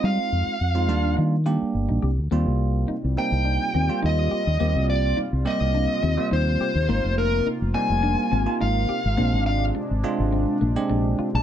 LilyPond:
<<
  \new Staff \with { instrumentName = "Lead electric guitar" } { \time 4/4 \key ees \major \tempo 4 = 105 f''2 r2 | r4. g''4. ees''4~ | ees''8 d''8 r8 ees''4. c''4~ | c''8 bes'8 r8 aes''4. f''4~ |
f''8 f''8 r2 r8. a''16 | }
  \new Staff \with { instrumentName = "Clean electric guitar" } { \time 4/4 \key ees \major ees'8 r4 r16 d'16 ees'8 f'8 r16 ees'16 g'8 | bes8 r8 ees'8 r8 d'8 c'8 ees'8 g'8 | bes8 r8 ees'8 r8 d'8 c'8 ees'8 g'8 | bes8 r8 ees'8 r8 d'8 c'8 ees'8 g'8 |
bes8 r8 d'8 r8 c'8 bes8 d'8 f'8 | }
  \new Staff \with { instrumentName = "Tine electric piano" } { \time 4/4 \key ees \major <aes c' ees' f'>4 r16 <aes c' ees' f'>16 <g bes d' f'>8. r16 <g bes d' g'>4 r8 | <g bes c' f'>4 r8 <g bes c' ees'>4 r16 <g bes c' f'>4 r16 | <g bes c' g'>4 r8 <g bes c' g'>4 r16 <g bes c' f'>4 r16 | <bes c' ees' f'>4 r8 <g bes c' ees'>4 r16 <bes c' ees' f'>4 r16 |
<aes c' d' f'>4 r8 <aes c' d' f'>4 r16 <aes c' d' g'>4 r16 | }
  \new Staff \with { instrumentName = "Analog synth pad" } { \time 4/4 \key ees \major << { r1 | <g f'>1~ | <g f'>1 | <bes f'>1 |
<aes d'>1 | } \\ { r1 | c1~ | c1~ | c1~ |
c1 | } >> }
  \new Staff \with { instrumentName = "Fingered electric bass" } { \clef bass \time 4/4 \key ees \major g16 r16 f,16 r16 f,8 ees,8 ees8. r16 g,,16 bes,,16 c,16 d,16 | ees,16 c,8. r16 c,16 r16 c,8 r16 ees,16 r16 ees,8 r16 ees,16 | ees,16 c,8. r16 c,16 r16 c,8 r16 ees,16 r16 ees,8 r16 ees,16 | aes,,16 f,,8. r16 f,,16 r16 f,,8 r16 aes,,16 r16 aes,,8 r16 aes,,16 |
bes,,16 aes,,8. r16 aes,,16 r16 aes,,8 r16 bes,,16 r16 bes,,8 r16 bes,,16 | }
>>